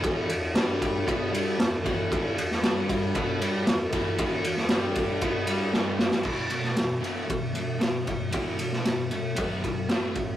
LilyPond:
<<
  \new Staff \with { instrumentName = "Distorted electric guitar" } { \clef bass \time 4/4 \key e \minor \tempo 4 = 116 <e, e>8 e,8 <g, g>4 <b, b>8 <g, g>8 e,8 <e, e>8 | <e, e>8 e,8 <g, g>4 <b, b>8 <g, g>8 e,8 <e, e>8 | <e, e>8 e,8 <g, g>4 <b, b>8 <g, g>8 <g, g>4 | <e, b, e>8 <e, b,>8 <e, b,>8 <e, b, e>8 <e, b,>8 <e, b,>8 <e, b,>8 <e, b,>8 |
<e, b, e>8 <e, b,>8 <e, b,>8 <e, b,>8 <b, fis b>8 <b, fis>8 <a, e a>8 <a, e>8 | }
  \new DrumStaff \with { instrumentName = "Drums" } \drummode { \time 4/4 <bd cymr>8 cymr8 <cymr sn>8 <bd cymr>8 <bd cymr>8 cymr8 <cymr sn>8 <bd cymr>8 | <bd cymr>8 cymr16 sn16 <cymr sn>8 <bd cymr>8 <bd cymr>8 cymr8 <cymr sn>8 <bd cymr>8 | <bd cymr>8 cymr16 sn16 <cymr sn>8 <bd cymr>8 <bd cymr>8 cymr8 sn8 sn16 sn16 | <cymc bd>8 cymr16 sn16 <cymr sn>8 cymr8 <bd cymr>8 cymr8 <cymr sn>8 <bd cymr>8 |
<bd cymr>8 cymr16 sn16 <cymr sn>8 cymr8 <bd cymr>8 <bd cymr>8 <cymr sn>8 <bd cymr>8 | }
>>